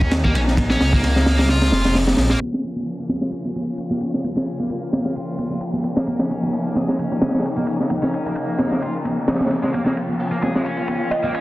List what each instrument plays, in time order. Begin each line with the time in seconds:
Already playing: detuned saw bass D#2, string section C#3 F3 A#3 D#4, distorted electric guitar C#4
0.01 kick
0.11 snare, ride
0.24 distorted electric guitar A#3, kick, high conga
0.35 detuned saw bass A#1, distorted electric guitar C#4, ride
0.48 snare
0.57 kick, ride, high conga
0.70 distorted electric guitar C#4, snare
0.81 detuned saw bass C#2, snare, open hi-hat
0.93 distorted electric guitar A#3, kick, high conga
1.03 snare, ride
1.16 snare
1.26 snare, open hi-hat, high conga
1.39 distorted electric guitar A#3, snare, open hi-hat, low conga
1.49 distorted electric guitar F4, snare, open hi-hat
1.61 snare, open hi-hat
1.72 detuned saw bass F1, snare, open hi-hat, high conga
1.84 snare, open hi-hat
1.95 snare, open hi-hat
2.07 snare, open hi-hat, high conga
2.17 detuned saw bass A#1, snare, open hi-hat
2.30 distorted electric guitar A#3, snare, open hi-hat
2.40 string section C#3 F3 A#3 F4, distorted electric guitar A#3, ride, downlifter, high conga
2.53 distorted electric guitar C#4, snare
2.63 ride, muted conga
2.76 high conga
2.86 open hi-hat
2.99 distorted electric guitar A#3
3.09 distorted electric guitar G#4, snare, ride, muted conga, high conga
3.21 distorted electric guitar G#3, snare
3.32 distorted electric guitar C#4, ride
3.45 ride, muted conga
3.56 ride, high conga
3.78 ride
3.91 distorted electric guitar A#3, muted conga, high conga
4.01 distorted electric guitar C#4, ride
4.14 snare
4.24 ride, muted conga, high conga
4.36 distorted electric guitar C#4, snare
4.46 ride
4.59 distorted electric guitar A#3, ride, high conga
4.70 ride, muted conga
4.93 snare, ride, high conga
5.05 distorted electric guitar A#3, snare, muted conga
5.15 distorted electric guitar F4, ride
5.38 ride, high conga
5.50 muted conga
5.61 ride
5.73 high conga
5.84 ride, muted conga
5.96 distorted electric guitar A#3, snare
6.07 distorted electric guitar A#3, string section D#4, ride, high conga
6.19 distorted electric guitar C#4, snare
6.30 ride, muted conga
6.43 high conga
6.53 open hi-hat
6.65 distorted electric guitar A#3, muted conga
6.75 distorted electric guitar G#4, snare, ride, high conga
6.88 distorted electric guitar G#3, snare
6.98 distorted electric guitar C#4, ride
7.12 ride, muted conga
7.21 snare, open hi-hat, high conga
7.27 snare, open hi-hat
7.34 snare, open hi-hat
7.39 snare, open hi-hat
7.44 ride, muted conga
7.57 distorted electric guitar A#3, high conga
7.67 distorted electric guitar C#4, ride
7.80 snare
7.90 ride, muted conga, high conga
8.02 distorted electric guitar C#4, snare
8.14 ride
8.25 distorted electric guitar A#3, ride, muted conga, high conga
8.35 ride
8.58 snare, ride, high conga
8.71 distorted electric guitar A#3, snare, muted conga
8.82 distorted electric guitar F4, ride
9.05 ride, muted conga, high conga
9.27 snare, open hi-hat
9.34 snare, open hi-hat
9.40 snare, open hi-hat, high conga
9.46 snare, open hi-hat
9.50 snare, ride, muted conga
9.63 distorted electric guitar G#3, snare
9.73 distorted electric guitar A#3, string section F4, ride, high conga
9.86 distorted electric guitar A#3, snare
9.97 ride, muted conga
10.08 high conga
10.20 open hi-hat
10.32 distorted electric guitar A#3
10.42 distorted electric guitar G#4, snare, ride, muted conga, high conga
10.55 distorted electric guitar G#3, snare
10.65 distorted electric guitar C#4, ride
10.77 ride, muted conga
10.88 ride, high conga
11.11 synth pluck D#5, ride
11.23 distorted electric guitar A#3, synth pluck D#5, muted conga, high conga
11.34 distorted electric guitar C#4, ride